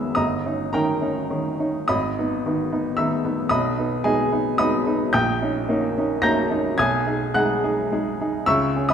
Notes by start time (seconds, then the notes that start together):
Already playing: G#1 D#3 G#3 B3 D#5 E5 B5 D#6 E6
0.15 G1 D#5 A#5 D#6
0.46 C#4 D#4
0.73 D#3 C#4 D#4 A#4 G5 A#5
1.02 C#4 D#4
1.30 D#3 C#4 D#4
1.60 C#4 D#4
1.88 G#1 D#5 B5 D#6
2.19 B3 D#4
2.46 D#3 B3 D#4
2.73 B3 D#4
2.97 D#3 B3 D#4 E5 E6
3.25 B3 D#4
3.49 B1 D#5 B5 D#6
3.78 B3 D#4
4.04 G#3 B3 D#4 G#4 D#5 G#5
4.32 B3 D#4
4.58 G#3 B3 D#4 D#5 B5 D#6
4.87 B3 D#4
5.13 A#1 G5 D#6 G6
5.42 C#4 D#4
5.69 A#3 C#4 D#4
5.98 C#4 D#4
6.22 A#3 C#4 D#4 A#5 G6 A#6
6.51 C#4 D#4
6.78 B1 G#5 D#6 G#6
7.07 D#4 G#4
7.34 G#3 D#4 G#4 F#5 F#6
7.64 D#4 G#4
7.92 G#3 D#4 G#4
8.21 D#4 G#4
8.46 C#2 E5 C#6 E6
8.76 C#4 G#4
8.89 D#5 B5 D#6